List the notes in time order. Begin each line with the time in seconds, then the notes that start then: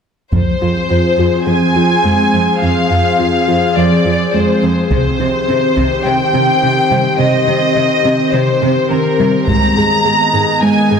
0.32 F2 F3 C4 G#4 C5, taiko
0.61 F2 F4
0.90 F2 F4
1.18 F2 F4
1.47 F2 F3 G#5
1.76 F2 F4
2.04 F2 G#3
2.33 F2 C4
2.62 F2 F3 F5
2.91 F2 F4
3.19 F2 F4
3.48 F2 F4
3.77 F2 F3 D5
4.06 F2 F4
4.34 F2 G#3 C5
4.63 F2 C4
4.90 C3 D#3 C4 G4 C5, taiko
5.20 C3 C4
5.48 C3 C4
5.77 C3 C4, taiko
6.05 C3 G5
6.34 C3 C4
6.62 C3 D#3
6.91 C3 G3
7.19 C3 D#5
7.48 C3 C4
7.75 C3 C4
8.05 C3 C4
8.33 C3 C5
8.62 C3 C4
8.90 C3 D#3 A#4
9.19 C3 G3
9.47 G#2 D#3 G#3 B3 G#4 D#5 A#5, taiko
9.76 G#2 G#4
10.05 G#2 G#4
10.34 G#2 G#4
10.62 G#2 G#3 G#5
10.91 G#2 G#4